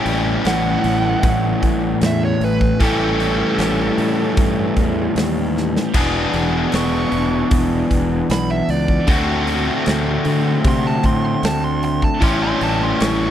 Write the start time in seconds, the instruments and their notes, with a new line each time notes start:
Already playing: overdriven electric guitar A2 E3 G3 C#4 G4
0.05 fingered electric bass A1, open hi-hat
0.45 fingered electric bass A1, lead electric guitar F#5, snare, open hi-hat
0.84 fingered electric bass A1, open hi-hat
1.23 fingered electric bass A1, kick, open hi-hat
1.62 fingered electric bass A1, kick, open hi-hat
2.01 fingered electric bass E2, snare, open hi-hat
2.06 lead electric guitar E5
2.25 lead electric guitar C#5
2.40 fingered electric bass A1, open hi-hat
2.44 lead electric guitar B4
2.61 kick
2.80 fingered electric bass A1, overdriven electric guitar A2 E3 G3 C#4 G4, lead electric guitar A4, kick, open hi-hat
3.20 open hi-hat
3.58 fingered electric bass A1, snare, open hi-hat
3.98 fingered electric bass A2, open hi-hat
4.37 fingered electric bass G2, kick, open hi-hat
4.77 fingered electric bass E2, kick, open hi-hat
5.15 fingered electric bass D#2, snare, open hi-hat
5.57 snare
5.76 snare
5.94 fingered electric bass E1, overdriven electric guitar E3 B3 D4 G#4, kick, open hi-hat, crash
6.34 fingered electric bass E1, open hi-hat
6.72 fingered electric bass E1, lead electric guitar C#6, snare, open hi-hat
7.12 fingered electric bass E1, open hi-hat
7.51 fingered electric bass E1, kick, open hi-hat
7.91 fingered electric bass E1, kick, open hi-hat
8.29 fingered electric bass B1, lead electric guitar B5, snare, open hi-hat
8.51 lead electric guitar E5
8.68 fingered electric bass C#2, lead electric guitar D5, open hi-hat
8.88 kick
9.07 fingered electric bass D2, overdriven electric guitar D3 A3 C4 F#4, kick, open hi-hat
9.47 open hi-hat
9.86 fingered electric bass D2, snare, open hi-hat
10.25 fingered electric bass D3, open hi-hat
10.65 fingered electric bass C3, lead electric guitar C6, kick, open hi-hat
10.87 lead electric guitar A5
11.03 fingered electric bass A2, lead electric guitar C6, kick, open hi-hat
11.26 lead electric guitar C6
11.43 fingered electric bass D2, lead electric guitar A5, snare, open hi-hat
11.64 lead electric guitar C6
11.83 lead electric guitar C6, open hi-hat
12.02 lead electric guitar A5, kick
12.20 fingered electric bass A1, overdriven electric guitar A2 E3 G3 C#4 G4, lead electric guitar C6, kick, open hi-hat
12.43 lead electric guitar C6
12.61 fingered electric bass A1, lead electric guitar A5, open hi-hat
12.83 lead electric guitar C6
13.00 fingered electric bass A1, lead electric guitar C#6, snare, open hi-hat